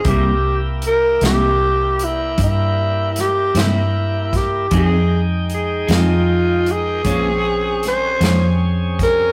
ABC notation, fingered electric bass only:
X:1
M:12/8
L:1/8
Q:3/8=52
K:Cphr
V:1 name="Fingered electric bass" clef=bass
C,,3 C,,3 G,,3 G,,3 | F,,3 F,,3 B,,,3 F,,3 |]